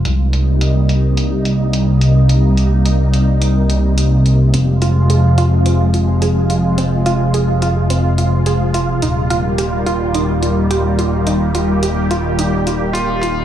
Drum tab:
HH |xxxxxxxx|xxxxxxxx|xxxxxxxx|xxxxxxxx|

HH |xxxxxxxx|xxxxxxxx|